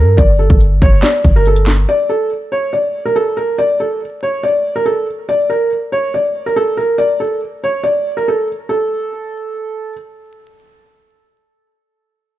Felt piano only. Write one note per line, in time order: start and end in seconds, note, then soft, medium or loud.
0.00 0.16 A#4 medium
0.17 0.37 D5 loud
0.39 0.59 A4 medium
0.83 1.02 C#5 medium
1.03 1.33 D5 medium
1.36 1.45 A#4 medium
1.47 1.66 A4 medium
1.89 2.08 D5 loud
2.09 2.29 A4 medium
2.52 2.72 C#5 medium
2.73 3.03 D5 medium
3.05 3.15 A#4 medium
3.16 3.36 A4 medium
3.37 3.57 A#4 medium
3.58 3.78 D5 loud
3.80 4.00 A4 medium
4.23 4.42 C#5 medium
4.43 4.73 D5 medium
4.76 4.85 A#4 medium
4.86 5.06 A4 medium
5.29 5.48 D5 loud
5.50 5.70 A#4 medium
5.92 6.12 C#5 medium
6.14 6.44 D5 medium
6.46 6.56 A#4 medium
6.56 6.76 A4 medium
6.77 6.97 A#4 medium
6.98 7.18 D5 loud
7.20 7.40 A4 medium
7.64 7.83 C#5 medium
7.83 8.14 D5 medium
8.17 8.26 A#4 medium
8.28 8.47 A4 medium
8.69 9.93 A4 medium